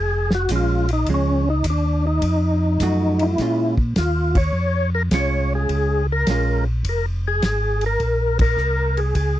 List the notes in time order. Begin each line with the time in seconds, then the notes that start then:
Already playing: F1 G#4
0.31 F#4, snare
0.49 A#1 F3 G#3 C#4, kick, hi-hat pedal, ride
0.56 F4
0.89 ride
0.93 D#4
1.06 C#2 F3 G#3, kick, ride
1.10 C#4
1.14 C#4
1.50 D#4
1.64 D#2, kick, hi-hat pedal, ride
1.70 D4
2.07 D#4
2.22 F2, kick, ride
2.80 F#2 F3 A3 D#4 F#4, kick, hi-hat pedal, ride
3.19 E4, ride
3.38 A#2 G#3 C#4, kick, snare, ride
3.42 F4
3.77 kick
3.96 D#2 F4, kick, snare, hi-hat pedal, ride
4.35 C#5, kick, ride
4.53 F2
4.95 A#4
5.11 C2 G#3 C#4 F4 C#5, kick, snare, hi-hat pedal, ride
5.55 G#4
5.69 C#2, kick, ride
6.12 A#4
6.27 A#1 G#3 C#4, kick, snare, hi-hat pedal, ride
6.31 F4
6.84 F1, kick, ride
6.89 A#4
7.28 G#4
7.42 G#1 G#4, kick, snare, hi-hat pedal, ride
7.81 ride
7.86 A#4
8.00 A#1, kick, ride
8.39 A#4, kick, ride
8.57 C2, hi-hat pedal
8.97 G#4, ride
9.15 C#2 G#4, kick, ride